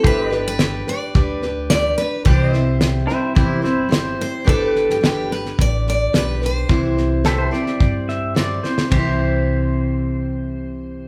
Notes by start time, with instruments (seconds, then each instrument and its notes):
0.04 upright bass G1, steel-string acoustic guitar G3 D4 G4 B4, pedal steel guitar G4 C5 E5, kick, snare
0.25 pedal steel guitar B4
0.30 steel-string acoustic guitar D4 G4 B4, pedal steel guitar D5, snare
0.48 steel-string acoustic guitar B4
0.59 snare, hi-hat pedal
0.87 steel-string acoustic guitar D4 G4 B4 D5, snare
1.14 upright bass D2, steel-string acoustic guitar G3 D4 G4 B4, kick, snare
1.42 steel-string acoustic guitar D4 G4 B4, snare
1.70 steel-string acoustic guitar G3 D4 G4 B4 D5, snare, hi-hat pedal
1.98 steel-string acoustic guitar D4 G4 B4, snare
2.25 upright bass C2, steel-string acoustic guitar C3 E3 G3 C4 E4 C5, pedal steel guitar G4 C5, kick, snare
2.29 pedal steel guitar D5
2.53 steel-string acoustic guitar G3 C4 E4 C5, pedal steel guitar E5, snare
2.81 snare, hi-hat pedal
3.08 steel-string acoustic guitar G3 C4 E4 C5, snare
3.35 upright bass G1, steel-string acoustic guitar C3 E3 G3 C4 E4 C5, kick, snare
3.62 steel-string acoustic guitar G3 C4 E4 C5, snare
3.89 steel-string acoustic guitar G3 C4 E4 C5, snare, hi-hat pedal
4.20 steel-string acoustic guitar C5, snare
4.45 upright bass G1, steel-string acoustic guitar G3 D4 G4 B4, pedal steel guitar G4, kick, snare
4.49 steel-string acoustic guitar A4, pedal steel guitar C5 D5
4.69 pedal steel guitar B4
4.75 snare
4.90 steel-string acoustic guitar G4, snare
5.01 upright bass G1, steel-string acoustic guitar G3 D4 G4, snare, hi-hat pedal
5.05 steel-string acoustic guitar G4 B4
5.29 steel-string acoustic guitar D4 G4 B4, snare
5.45 snare
5.59 upright bass A1, steel-string acoustic guitar D5, kick, snare
5.87 steel-string acoustic guitar D5, snare
6.13 upright bass B1, steel-string acoustic guitar G3 D4 G4 B4, snare, hi-hat pedal
6.18 steel-string acoustic guitar B4
6.42 steel-string acoustic guitar D4 G4 B4, snare
6.46 steel-string acoustic guitar C5
6.69 upright bass C2, steel-string acoustic guitar C3 E3 G3 C4 E4 C5, kick, snare
6.97 snare
7.24 steel-string acoustic guitar G3 C4 E4 C5, pedal steel guitar G4 A4 B4, snare, hi-hat pedal
7.29 pedal steel guitar E5
7.38 pedal steel guitar C5
7.48 pedal steel guitar C5, steel-string acoustic guitar C5
7.52 steel-string acoustic guitar G3 C4 E4, pedal steel guitar D5, snare
7.66 snare
7.80 upright bass G2, kick, snare
8.09 pedal steel guitar E5, snare
8.35 steel-string acoustic guitar G3 C4 E4 C5, pedal steel guitar D5, snare, hi-hat pedal
8.64 steel-string acoustic guitar G3 C4 E4 C5, snare
8.78 snare
8.88 upright bass C2, steel-string acoustic guitar C3 E3, pedal steel guitar G4 C5, kick, ride bell
8.92 steel-string acoustic guitar G3 C4, pedal steel guitar C5 E5
8.97 steel-string acoustic guitar E4 C5